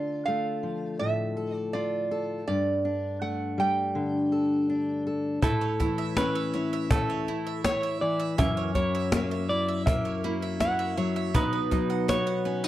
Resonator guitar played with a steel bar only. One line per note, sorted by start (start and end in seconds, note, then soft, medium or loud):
0.00 0.28 D5 medium
0.26 0.99 F5 medium
0.99 1.55 E5 medium
1.55 1.73 D5 medium
1.73 2.25 D5 medium
2.48 3.17 D5 medium
3.22 3.59 F#5 medium
3.60 5.03 G5 medium
5.42 8.47 E4 medium
8.38 11.43 C#4 medium
11.36 12.68 D#4 medium